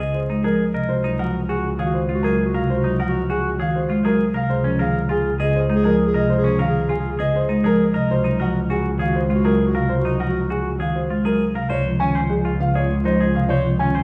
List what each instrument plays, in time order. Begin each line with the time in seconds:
Already playing: double bass C#2
0.00 marimba C#3, clean electric guitar G#4, grand piano D#5
0.12 clarinet G#4, grand piano C5
0.29 marimba G#3, clean electric guitar D#4
0.42 marimba F3, clarinet G#4, clean electric guitar G#4, grand piano A#4
0.74 marimba C3, clean electric guitar A#4, grand piano D#5
0.89 double bass C#2, clarinet F#4, grand piano C5
1.04 marimba F#3, clean electric guitar D#4
1.19 marimba F3, clarinet F#4, clean electric guitar A#4, grand piano F#5
1.49 clean electric guitar F#4, grand piano G#4
1.53 clarinet F#4
1.79 marimba D#3, clean electric guitar G#4, grand piano F5
1.84 clarinet F#4
1.94 grand piano C5
2.09 marimba G#3, clean electric guitar F4
2.14 clarinet F#4
2.23 marimba F#3, clean electric guitar G#4, grand piano A#4
2.45 clarinet F#4
2.54 marimba C3, clean electric guitar A#4, grand piano F5
2.70 grand piano C5
2.77 clarinet F#4
2.84 marimba F#3, clean electric guitar D#4
2.99 marimba F3, clean electric guitar A#4, grand piano F#5
3.08 clarinet F#4
3.30 clean electric guitar F#4, grand piano G#4
3.39 clarinet F#4
3.59 marimba D#3, clean electric guitar G#4, grand piano F5
3.70 clarinet F#4
3.75 grand piano C5
3.89 marimba G#3, clean electric guitar F4
4.03 marimba F#3, clarinet F#4, clean electric guitar G#4, grand piano A#4
4.34 marimba C3, clean electric guitar A#4, grand piano F5
4.49 double bass C#2, clarinet G#4, grand piano C5
4.64 marimba F3, clean electric guitar C#4
4.79 marimba D#3, clarinet G#4, clean electric guitar A#4, grand piano F5
5.09 clean electric guitar F4, grand piano G#4, clarinet G#4
5.40 marimba C#3, clean electric guitar G#4, grand piano D#5
5.44 clarinet G#4
5.55 grand piano C5
5.69 marimba G#3, clean electric guitar D#4
5.75 clarinet G#4
5.84 marimba F3, clean electric guitar G#4, grand piano A#4
6.07 clarinet G#4
6.14 marimba C3, clean electric guitar A#4, grand piano D#5
6.30 grand piano C5
6.38 clarinet G#4
6.44 marimba F3, clean electric guitar C#4
6.59 marimba D#3, clean electric guitar A#4, grand piano F5
6.69 clarinet G#4
6.89 clean electric guitar F4, grand piano G#4
6.99 clarinet G#4
7.19 marimba C#3, clean electric guitar G#4, grand piano D#5
7.32 clarinet G#4, grand piano C5
7.49 marimba G#3, clean electric guitar D#4
7.63 marimba F3, clarinet G#4, clean electric guitar G#4, grand piano A#4
7.93 marimba C3, clean electric guitar A#4, grand piano D#5
8.10 double bass C#2, clarinet F#4, grand piano C5
8.24 marimba F#3, clean electric guitar D#4
8.39 marimba F3, clarinet F#4, clean electric guitar A#4, grand piano F#5
8.70 clean electric guitar F#4, clarinet F#4, grand piano G#4
8.99 marimba D#3, clean electric guitar G#4, grand piano F5
9.03 clarinet F#4
9.15 grand piano C5
9.29 marimba G#3, clean electric guitar F4
9.35 clarinet F#4
9.44 marimba F#3, clean electric guitar G#4, grand piano A#4
9.66 clarinet F#4
9.74 marimba C3, clean electric guitar A#4, grand piano F5
9.89 grand piano C5
9.98 clarinet F#4
10.04 marimba F#3, clean electric guitar D#4
10.19 marimba F3, clean electric guitar A#4, grand piano F#5
10.29 clarinet F#4
10.50 clean electric guitar F#4, grand piano G#4
10.60 clarinet F#4
10.79 marimba D#3, clean electric guitar G#4, grand piano F5
10.92 clarinet F#4, grand piano C5
11.10 marimba G#3, clean electric guitar F4
11.23 marimba F#3, clarinet F#4, clean electric guitar G#4, grand piano A#4
11.55 marimba C3, clean electric guitar A#4, grand piano F5
11.70 double bass C#2, clarinet F4, clean electric guitar C5, grand piano C#5
11.85 marimba F3
12.00 marimba D#3, clean electric guitar C#4, grand piano G#5
12.15 clean electric guitar C5
12.30 marimba F3, grand piano G#4
12.45 clean electric guitar F4
12.60 marimba C#3, grand piano F5
12.75 clean electric guitar G#4, grand piano C#5
12.90 marimba G#3
13.04 marimba F3, clean electric guitar D#4, grand piano C5
13.21 clean electric guitar G#4
13.35 marimba C3, grand piano F5
13.49 clean electric guitar C5, grand piano C#5
13.65 marimba F3
13.79 marimba D#3, clean electric guitar C#4, grand piano G#5
13.95 clean electric guitar C5